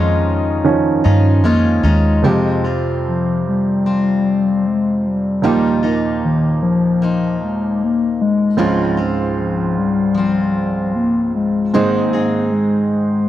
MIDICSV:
0, 0, Header, 1, 5, 480
1, 0, Start_track
1, 0, Tempo, 794702
1, 1353, Time_signature, 4, 2, 24, 8
1, 3758, Tempo, 789474
1, 8055, End_track
2, 0, Start_track
2, 0, Title_t, "Steel-string acoustic guitar"
2, 0, Program_c, 0, 25
2, 0, Note_on_c, 0, 56, 52
2, 0, Note_on_c, 0, 61, 55
2, 0, Note_on_c, 0, 63, 57
2, 0, Note_on_c, 0, 65, 51
2, 624, Note_off_c, 0, 63, 0
2, 626, Note_off_c, 0, 65, 0
2, 628, Note_on_c, 0, 65, 40
2, 630, Note_off_c, 0, 61, 0
2, 631, Note_on_c, 0, 63, 43
2, 637, Note_on_c, 0, 61, 41
2, 866, Note_off_c, 0, 56, 0
2, 866, Note_off_c, 0, 61, 0
2, 869, Note_off_c, 0, 65, 0
2, 869, Note_on_c, 0, 56, 46
2, 870, Note_off_c, 0, 63, 0
2, 873, Note_on_c, 0, 61, 57
2, 877, Note_on_c, 0, 63, 53
2, 879, Note_on_c, 0, 65, 58
2, 1100, Note_off_c, 0, 65, 0
2, 1105, Note_off_c, 0, 63, 0
2, 1108, Note_off_c, 0, 61, 0
2, 1108, Note_on_c, 0, 65, 42
2, 1110, Note_off_c, 0, 56, 0
2, 1112, Note_on_c, 0, 63, 38
2, 1115, Note_on_c, 0, 61, 38
2, 1119, Note_on_c, 0, 56, 34
2, 1350, Note_off_c, 0, 56, 0
2, 1352, Note_off_c, 0, 65, 0
2, 1354, Note_off_c, 0, 63, 0
2, 1354, Note_on_c, 0, 41, 50
2, 1355, Note_off_c, 0, 61, 0
2, 1355, Note_on_c, 0, 48, 43
2, 1357, Note_on_c, 0, 56, 47
2, 1359, Note_on_c, 0, 60, 49
2, 1363, Note_on_c, 0, 65, 50
2, 1589, Note_off_c, 0, 65, 0
2, 1593, Note_off_c, 0, 60, 0
2, 1596, Note_on_c, 0, 65, 28
2, 1597, Note_off_c, 0, 41, 0
2, 1597, Note_off_c, 0, 48, 0
2, 1598, Note_off_c, 0, 56, 0
2, 1600, Note_on_c, 0, 60, 29
2, 1608, Note_on_c, 0, 55, 27
2, 2323, Note_off_c, 0, 60, 0
2, 2332, Note_on_c, 0, 60, 38
2, 2336, Note_off_c, 0, 65, 0
2, 2339, Note_on_c, 0, 65, 35
2, 2357, Note_off_c, 0, 55, 0
2, 3282, Note_on_c, 0, 51, 40
2, 3284, Note_off_c, 0, 60, 0
2, 3284, Note_on_c, 0, 55, 47
2, 3285, Note_on_c, 0, 58, 50
2, 3286, Note_on_c, 0, 63, 46
2, 3288, Note_off_c, 0, 65, 0
2, 3291, Note_on_c, 0, 65, 57
2, 3513, Note_off_c, 0, 65, 0
2, 3520, Note_off_c, 0, 63, 0
2, 3520, Note_on_c, 0, 65, 33
2, 3522, Note_off_c, 0, 51, 0
2, 3523, Note_off_c, 0, 55, 0
2, 3523, Note_off_c, 0, 58, 0
2, 3527, Note_on_c, 0, 63, 30
2, 3532, Note_on_c, 0, 58, 23
2, 4235, Note_off_c, 0, 58, 0
2, 4243, Note_off_c, 0, 63, 0
2, 4243, Note_on_c, 0, 58, 36
2, 4250, Note_on_c, 0, 63, 38
2, 4255, Note_off_c, 0, 65, 0
2, 4257, Note_on_c, 0, 65, 37
2, 5190, Note_on_c, 0, 49, 49
2, 5193, Note_on_c, 0, 53, 51
2, 5194, Note_off_c, 0, 58, 0
2, 5194, Note_off_c, 0, 63, 0
2, 5196, Note_on_c, 0, 56, 55
2, 5196, Note_on_c, 0, 60, 55
2, 5197, Note_off_c, 0, 65, 0
2, 5200, Note_on_c, 0, 65, 53
2, 5423, Note_off_c, 0, 65, 0
2, 5430, Note_off_c, 0, 60, 0
2, 5430, Note_on_c, 0, 65, 31
2, 5432, Note_off_c, 0, 49, 0
2, 5434, Note_off_c, 0, 53, 0
2, 5436, Note_off_c, 0, 56, 0
2, 5437, Note_on_c, 0, 60, 29
2, 6143, Note_on_c, 0, 53, 38
2, 6153, Note_off_c, 0, 65, 0
2, 6159, Note_off_c, 0, 60, 0
2, 6162, Note_on_c, 0, 60, 39
2, 6171, Note_on_c, 0, 65, 41
2, 7107, Note_off_c, 0, 53, 0
2, 7112, Note_on_c, 0, 44, 50
2, 7116, Note_on_c, 0, 51, 55
2, 7117, Note_on_c, 0, 56, 55
2, 7118, Note_off_c, 0, 60, 0
2, 7118, Note_on_c, 0, 60, 50
2, 7119, Note_off_c, 0, 65, 0
2, 7121, Note_on_c, 0, 68, 55
2, 7122, Note_on_c, 0, 63, 55
2, 7343, Note_off_c, 0, 68, 0
2, 7347, Note_off_c, 0, 63, 0
2, 7350, Note_on_c, 0, 68, 34
2, 7351, Note_off_c, 0, 60, 0
2, 7352, Note_off_c, 0, 44, 0
2, 7354, Note_off_c, 0, 51, 0
2, 7355, Note_off_c, 0, 56, 0
2, 7355, Note_on_c, 0, 63, 29
2, 7358, Note_on_c, 0, 60, 28
2, 7361, Note_on_c, 0, 56, 24
2, 8055, Note_off_c, 0, 56, 0
2, 8055, Note_off_c, 0, 60, 0
2, 8055, Note_off_c, 0, 63, 0
2, 8055, Note_off_c, 0, 68, 0
2, 8055, End_track
3, 0, Start_track
3, 0, Title_t, "Soft synth lead"
3, 0, Program_c, 1, 80
3, 874, Note_on_c, 1, 58, 108
3, 1116, Note_on_c, 1, 56, 102
3, 1125, Note_off_c, 1, 58, 0
3, 1599, Note_off_c, 1, 56, 0
3, 1860, Note_on_c, 1, 53, 69
3, 2075, Note_off_c, 1, 53, 0
3, 2103, Note_on_c, 1, 55, 78
3, 2815, Note_on_c, 1, 56, 91
3, 2824, Note_off_c, 1, 55, 0
3, 3057, Note_on_c, 1, 55, 88
3, 3066, Note_off_c, 1, 56, 0
3, 3529, Note_off_c, 1, 55, 0
3, 3769, Note_on_c, 1, 51, 76
3, 3988, Note_off_c, 1, 51, 0
3, 4004, Note_on_c, 1, 53, 75
3, 4457, Note_off_c, 1, 53, 0
3, 4492, Note_on_c, 1, 56, 75
3, 4736, Note_on_c, 1, 58, 91
3, 4745, Note_off_c, 1, 56, 0
3, 4965, Note_off_c, 1, 58, 0
3, 4969, Note_on_c, 1, 56, 82
3, 5417, Note_off_c, 1, 56, 0
3, 5680, Note_on_c, 1, 53, 79
3, 5919, Note_on_c, 1, 55, 89
3, 5928, Note_off_c, 1, 53, 0
3, 6629, Note_off_c, 1, 55, 0
3, 6632, Note_on_c, 1, 58, 103
3, 6856, Note_off_c, 1, 58, 0
3, 6875, Note_on_c, 1, 56, 84
3, 7107, Note_on_c, 1, 58, 90
3, 7116, Note_off_c, 1, 56, 0
3, 7585, Note_on_c, 1, 56, 84
3, 7594, Note_off_c, 1, 58, 0
3, 7826, Note_off_c, 1, 56, 0
3, 7830, Note_on_c, 1, 56, 85
3, 8055, Note_off_c, 1, 56, 0
3, 8055, End_track
4, 0, Start_track
4, 0, Title_t, "Upright piano"
4, 0, Program_c, 2, 0
4, 0, Control_c, 2, 64, 127
4, 0, Note_on_c, 2, 51, 39
4, 0, Note_on_c, 2, 53, 42
4, 0, Note_on_c, 2, 61, 49
4, 380, Note_off_c, 2, 51, 0
4, 382, Note_off_c, 2, 53, 0
4, 385, Note_off_c, 2, 61, 0
4, 389, Note_on_c, 2, 51, 37
4, 391, Note_on_c, 2, 53, 34
4, 394, Note_on_c, 2, 61, 45
4, 605, Note_off_c, 2, 51, 0
4, 606, Note_off_c, 2, 53, 0
4, 608, Note_off_c, 2, 61, 0
4, 1345, Note_on_c, 2, 53, 35
4, 1351, Note_on_c, 2, 41, 30
4, 1351, Note_on_c, 2, 48, 34
4, 1353, Note_on_c, 2, 60, 35
4, 1358, Note_on_c, 2, 67, 39
4, 1361, Control_c, 2, 64, 0
4, 1474, Control_c, 2, 64, 127
4, 3254, Note_off_c, 2, 53, 0
4, 3257, Note_off_c, 2, 41, 0
4, 3257, Note_off_c, 2, 48, 0
4, 3258, Note_off_c, 2, 60, 0
4, 3260, Note_off_c, 2, 67, 0
4, 3275, Note_on_c, 2, 53, 38
4, 3279, Note_on_c, 2, 58, 35
4, 3280, Note_on_c, 2, 46, 36
4, 3282, Note_on_c, 2, 39, 36
4, 3285, Note_on_c, 2, 63, 34
4, 3288, Note_on_c, 2, 67, 40
4, 3290, Control_c, 2, 64, 0
4, 3395, Control_c, 2, 64, 127
4, 5169, Note_off_c, 2, 53, 0
4, 5172, Note_off_c, 2, 46, 0
4, 5172, Note_off_c, 2, 58, 0
4, 5173, Note_off_c, 2, 39, 0
4, 5174, Note_off_c, 2, 63, 0
4, 5176, Note_off_c, 2, 67, 0
4, 5186, Note_on_c, 2, 53, 39
4, 5187, Note_on_c, 2, 60, 37
4, 5189, Note_on_c, 2, 37, 41
4, 5190, Note_on_c, 2, 44, 39
4, 5194, Note_on_c, 2, 61, 38
4, 5196, Note_on_c, 2, 65, 43
4, 5205, Control_c, 2, 64, 0
4, 5322, Control_c, 2, 64, 127
4, 7083, Note_off_c, 2, 53, 0
4, 7084, Note_off_c, 2, 60, 0
4, 7085, Note_off_c, 2, 37, 0
4, 7085, Note_off_c, 2, 44, 0
4, 7087, Note_off_c, 2, 61, 0
4, 7088, Note_off_c, 2, 65, 0
4, 7110, Note_on_c, 2, 56, 40
4, 7114, Note_on_c, 2, 44, 38
4, 7114, Note_on_c, 2, 51, 37
4, 7114, Note_on_c, 2, 60, 40
4, 7117, Note_on_c, 2, 63, 35
4, 7120, Note_on_c, 2, 72, 45
4, 7121, Control_c, 2, 64, 0
4, 7222, Control_c, 2, 64, 127
4, 8055, Note_off_c, 2, 44, 0
4, 8055, Note_off_c, 2, 51, 0
4, 8055, Note_off_c, 2, 56, 0
4, 8055, Note_off_c, 2, 60, 0
4, 8055, Note_off_c, 2, 63, 0
4, 8055, Note_off_c, 2, 72, 0
4, 8055, End_track
5, 0, Start_track
5, 0, Title_t, "Fingered electric bass"
5, 0, Program_c, 3, 33
5, 0, Note_on_c, 3, 41, 68
5, 609, Note_off_c, 3, 41, 0
5, 637, Note_on_c, 3, 43, 70
5, 871, Note_off_c, 3, 43, 0
5, 871, Note_on_c, 3, 41, 74
5, 1094, Note_off_c, 3, 41, 0
5, 1108, Note_on_c, 3, 39, 58
5, 1335, Note_off_c, 3, 39, 0
5, 8055, End_track
0, 0, End_of_file